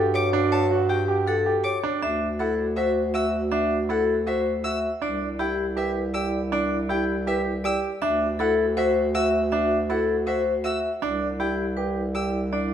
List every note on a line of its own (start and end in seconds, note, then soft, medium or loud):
0.00 1.91 G2 medium
0.00 1.79 F#4 loud
0.00 0.20 G4 medium
0.14 0.39 C#5 medium
0.14 0.29 D6 loud
0.33 0.58 D4 loud
0.52 0.76 C#5 medium
0.52 0.66 A5 loud
0.71 0.95 F#4 medium
0.89 1.14 G4 medium
0.89 1.03 G5 medium
1.08 1.33 G4 medium
1.27 1.52 A4 medium
1.27 1.41 F#5 medium
1.46 1.70 G4 medium
1.64 1.89 C#5 medium
1.64 1.78 D6 medium
1.83 2.01 D4 medium
2.02 4.91 D2 medium
2.02 2.26 D4 medium
2.02 4.79 F#4 medium
2.02 2.27 E5 medium
2.39 2.64 E4 medium
2.39 2.64 A4 medium
2.39 2.53 F#5 medium
2.76 3.01 F#4 medium
2.76 3.01 C5 medium
2.76 2.91 E5 medium
3.14 3.39 F#4 medium
3.14 3.39 E5 medium
3.14 3.29 E6 medium
3.52 3.76 D4 medium
3.52 3.76 E5 medium
3.89 4.14 E4 medium
3.89 4.14 A4 medium
3.89 4.04 F#5 medium
4.27 4.51 F#4 medium
4.27 4.51 C5 medium
4.27 4.41 E5 medium
4.64 4.89 F#4 medium
4.64 4.89 E5 medium
4.64 4.78 E6 medium
5.02 7.90 C2 medium
5.02 5.26 D4 medium
5.02 7.79 E4 medium
5.02 5.26 D5 medium
5.39 5.64 E4 medium
5.39 5.64 G4 medium
5.39 5.53 G5 medium
5.77 6.01 G4 medium
5.77 6.01 B4 medium
5.77 5.91 E5 medium
6.14 6.39 G4 medium
6.14 6.39 D5 medium
6.14 6.28 E6 medium
6.52 6.76 D4 medium
6.52 6.77 D5 loud
6.89 7.14 E4 medium
6.89 7.14 G4 medium
6.89 7.04 G5 medium
7.27 7.51 G4 medium
7.27 7.52 B4 medium
7.27 7.41 E5 medium
7.64 7.89 G4 medium
7.64 7.89 D5 medium
7.64 7.79 E6 loud
8.02 10.91 D2 medium
8.02 8.26 D4 medium
8.02 10.79 F#4 medium
8.02 8.26 E5 loud
8.39 8.64 E4 medium
8.39 8.64 A4 medium
8.39 8.54 F#5 medium
8.77 9.01 F#4 medium
8.77 9.01 C5 medium
8.77 8.91 E5 medium
9.15 9.39 F#4 medium
9.15 9.39 E5 medium
9.15 9.29 E6 loud
9.52 9.76 D4 medium
9.52 9.76 E5 medium
9.90 10.14 E4 medium
9.90 10.14 A4 medium
9.90 10.04 F#5 medium
10.27 10.51 F#4 medium
10.27 10.51 C5 medium
10.27 10.41 E5 medium
10.64 10.89 F#4 medium
10.64 10.89 E5 medium
10.64 10.79 E6 medium
11.02 12.74 C2 medium
11.02 11.26 D4 medium
11.02 12.74 E4 medium
11.02 11.26 D5 medium
11.40 11.64 E4 medium
11.40 11.64 G4 medium
11.40 11.54 G5 medium
11.77 12.01 G4 medium
11.77 12.01 B4 medium
12.15 12.39 G4 medium
12.15 12.39 D5 medium
12.15 12.29 E6 medium
12.53 12.74 D4 medium
12.53 12.74 D5 medium